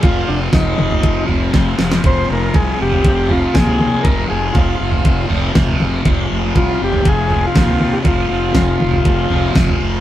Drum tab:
SD |----o-------o-oo|------------o---|------------o---|------------o---|
T2 |------o---------|------------o-o-|------------o-o-|------------o-o-|
FT |o---o--o--o-----|o---o--o--o--o--|o---o--o--o--o--|o---o--o--o--o--|
BD |o---o---o---o---|o---o---o---o---|o---o---o---o---|o---o---o---o---|

SD |----o-------o---|
T2 |------o---------|
FT |o---o--o--o--o--|
BD |o---o---o---o---|